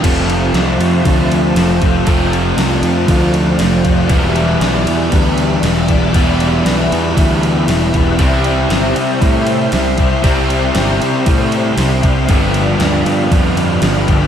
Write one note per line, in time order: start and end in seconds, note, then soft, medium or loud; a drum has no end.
0.03 0.49 F1 medium
0.03 2.05 F2 medium
0.03 2.06 C3 medium
0.03 1.03 F3 medium
0.03 1.04 A3 medium
0.03 1.05 C4 medium
0.03 4.06 F4 medium
0.03 1.07 F4 medium
0.03 4.06 C5 medium
0.03 2.05 E5 medium
0.03 4.06 A5 medium
0.03 kick loud
0.03 crash loud
0.03 ride medium
0.30 ride medium
0.53 0.76 C2 medium
0.53 snare loud
0.53 ride medium
0.79 1.02 F2 medium
0.79 ride medium
1.03 1.51 D2 medium
1.03 2.04 F3 medium
1.03 2.05 A3 medium
1.03 2.06 C4 medium
1.03 kick loud
1.03 ride medium
1.07 2.06 F4 medium
1.32 ride medium
1.55 1.78 F1 medium
1.55 snare loud
1.55 ride medium
1.81 2.04 F1 medium
1.81 2.05 F3 medium
1.81 2.06 A3 medium
1.81 2.05 C4 medium
1.81 2.05 F4 medium
1.81 kick medium
1.81 ride medium
2.05 2.53 F1 medium
2.05 4.07 F2 medium
2.05 4.08 C3 medium
2.05 3.06 F3 medium
2.05 3.07 A3 medium
2.05 3.08 C4 medium
2.05 8.15 D5 medium
2.05 kick loud
2.05 ride medium
2.10 3.08 F4 loud
2.33 ride medium
2.57 2.80 C2 medium
2.57 snare loud
2.57 ride medium
2.82 3.05 F2 medium
2.82 ride medium
3.07 3.54 D2 medium
3.07 4.07 F3 medium
3.07 4.08 A3 medium
3.07 4.09 C4 medium
3.07 4.10 F4 medium
3.07 kick loud
3.07 ride medium
3.34 ride medium
3.59 3.82 F1 medium
3.59 snare loud
3.59 ride medium
3.83 4.08 F1 medium
3.83 4.07 F3 medium
3.83 4.08 A3 medium
3.83 4.09 C4 medium
3.83 4.08 F4 medium
3.83 kick medium
3.83 ride medium
4.08 4.56 E1 medium
4.08 6.11 E2 medium
4.08 6.12 B2 medium
4.08 5.10 E3 medium
4.08 5.11 G3 medium
4.08 5.12 B3 medium
4.08 5.13 E4 medium
4.08 8.15 G4 medium
4.08 12.24 E5 medium
4.08 8.14 B5 medium
4.08 kick loud
4.08 ride medium
4.36 ride medium
4.60 4.83 B1 medium
4.60 snare loud
4.60 ride medium
4.86 5.09 E2 medium
4.86 ride medium
5.10 5.58 D2 medium
5.10 6.11 E3 medium
5.10 6.13 G3 medium
5.10 6.13 B3 medium
5.10 6.15 E4 medium
5.10 kick loud
5.10 ride medium
5.38 ride medium
5.63 5.86 E1 medium
5.63 snare loud
5.63 ride medium
5.87 6.12 E1 medium
5.87 6.12 E3 medium
5.87 6.13 G3 medium
5.87 6.13 B3 medium
5.87 6.15 E4 medium
5.87 kick medium
5.87 ride medium
6.12 6.61 E1 medium
6.12 8.17 E2 medium
6.12 8.17 B2 medium
6.12 7.14 E3 medium
6.12 7.15 G3 medium
6.12 7.15 B3 medium
6.12 7.18 E4 medium
6.12 kick loud
6.12 ride medium
6.40 ride medium
6.65 6.88 B1 medium
6.65 snare loud
6.65 ride medium
6.92 7.14 E2 medium
6.92 ride medium
7.15 7.63 D2 medium
7.15 8.17 E3 medium
7.15 8.18 G3 medium
7.15 8.17 B3 medium
7.15 8.21 E4 medium
7.15 kick loud
7.15 ride medium
7.43 ride medium
7.67 7.90 E1 medium
7.67 snare loud
7.67 ride medium
7.92 8.17 E1 medium
7.92 8.17 E3 medium
7.92 8.18 G3 medium
7.92 8.17 B3 medium
7.92 8.20 E4 medium
7.92 kick medium
7.92 ride medium
8.17 8.65 C2 medium
8.17 9.21 C3 medium
8.17 9.21 G3 medium
8.17 9.23 C4 medium
8.17 14.27 G4 medium
8.17 12.24 C5 medium
8.17 12.24 C6 medium
8.17 kick loud
8.17 ride medium
8.21 9.24 E4 medium
8.44 ride medium
8.70 8.93 G1 medium
8.70 snare medium
8.70 ride medium
8.96 9.19 C3 medium
8.96 ride medium
9.21 9.67 A2 medium
9.21 10.21 C3 medium
9.21 10.23 G3 medium
9.21 10.23 C4 medium
9.21 10.23 E4 medium
9.21 kick loud
9.21 ride medium
9.47 ride medium
9.72 9.95 C2 medium
9.72 snare loud
9.72 ride medium
9.98 10.21 C2 medium
9.98 10.22 C3 medium
9.98 10.23 G3 medium
9.98 10.22 C4 medium
9.98 10.22 E4 medium
9.98 kick medium
9.98 ride medium
10.22 10.70 C2 medium
10.22 11.24 C3 medium
10.22 11.26 G3 medium
10.22 11.25 C4 medium
10.22 11.26 E4 medium
10.22 kick loud
10.22 ride medium
10.50 ride medium
10.75 10.98 G1 medium
10.75 snare loud
10.75 ride medium
11.01 11.23 C3 medium
11.01 ride medium
11.25 11.72 A2 medium
11.25 12.26 C3 medium
11.25 12.29 G3 medium
11.25 12.28 C4 medium
11.25 12.28 E4 medium
11.25 kick loud
11.25 ride medium
11.52 ride medium
11.77 12.00 C2 medium
11.77 snare loud
11.77 ride loud
12.02 12.26 C2 medium
12.02 12.28 C3 medium
12.02 12.29 G3 medium
12.02 12.27 C4 medium
12.02 12.26 E4 medium
12.02 kick medium
12.02 ride medium
12.27 12.75 G1 loud
12.27 13.29 G2 medium
12.27 13.29 D3 medium
12.27 13.31 F3 medium
12.27 14.27 G3 medium
12.27 13.32 B3 medium
12.27 13.32 D4 medium
12.27 14.27 D5 medium
12.27 14.27 F5 medium
12.27 14.27 B5 medium
12.27 kick loud
12.27 ride medium
12.54 ride medium
12.80 13.03 D2 medium
12.80 snare loud
12.80 ride medium
13.06 13.28 G2 medium
13.06 ride medium
13.30 13.77 F2 medium
13.30 14.27 G2 medium
13.30 14.27 D3 medium
13.30 14.27 F3 medium
13.30 14.27 B3 medium
13.30 14.27 D4 medium
13.30 kick loud
13.30 ride medium
13.57 ride medium
13.82 14.05 G1 medium
13.82 snare loud
13.82 ride medium
14.06 14.27 G1 medium
14.06 14.27 G2 medium
14.06 14.27 D3 medium
14.06 14.27 F3 medium
14.06 14.27 B3 medium
14.06 14.27 D4 medium
14.06 kick medium
14.06 ride medium